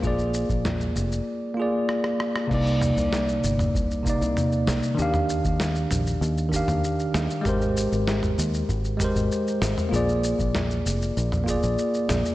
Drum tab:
CC |----------------|x---------------|----------------|----------------|
SH |xxxxxxxx--------|xxxxxxxxxxxxxxxx|xxxxxxxxxxxxxxxx|xxxxxxxxxxxxxxxx|
SD |----o-------rrrr|----o---------o-|----o---------o-|----o---------o-|
T2 |----o-----------|--o----o----o---|-o----o----o----|o----o----o----o|
BD |o--o------------|o-------o-o-----|---o------o-----|o-------o-o-----|

CC |----------------|
SH |xxxxxxxxxxxxxxxx|
SD |----o---------o-|
T2 |----o----o----o-|
BD |---o------o-----|